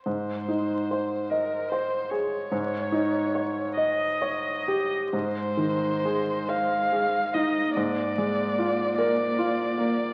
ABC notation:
X:1
M:6/8
L:1/16
Q:3/8=48
K:Ab
V:1 name="Violin"
c6 B2 c2 d2- | d6 e4- e z | c6 f4 e2 | =d6 d6 |]
V:2 name="Grand piano"
A,,2 E2 c2 e2 c2 A2 | A,,2 E2 d2 e2 d2 G2 | A,,2 E,2 A2 c2 A2 E2 | A,,2 A,2 F2 B2 F2 B,2 |]
V:3 name="Cello"
z12 | z12 | A,12 | B,12 |]